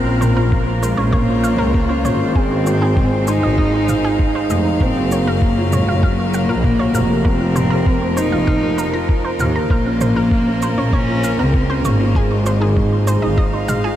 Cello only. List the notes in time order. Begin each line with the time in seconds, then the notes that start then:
Already playing: C4
0.38 A#3
0.83 G#3
1.14 A#3
2.37 C4
3.28 D#4
4.81 C4
5.27 A#3
5.72 G#3
6.03 A#3
7.26 C4
8.18 D#4
9.70 A#3
10.93 C#4
11.39 C4
11.78 C4
11.86 A#3
12.17 G#3